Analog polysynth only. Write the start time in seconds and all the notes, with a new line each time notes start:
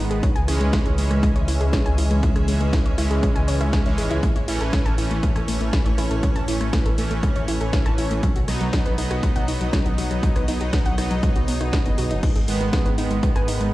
Already playing: D#3 G#3 B3
0.48 E3 G#3 C#4
0.98 E3 G#3 C#4
2.48 E3 G#3 C#4
2.98 E3 G#3 C#4
3.86 E3 G#3 C#4
4.48 E3 A3 C#4
4.98 E3 A3 C#4
6.48 E3 A3 C#4
6.98 E3 A3 C#4
8.48 F#3 B3 D#4
8.98 F#3 B3 D#4
10.48 F#3 B3 D#4
10.98 F#3 B3 D#4
12.48 D#3 G#3 B3
12.98 D#3 G#3 B3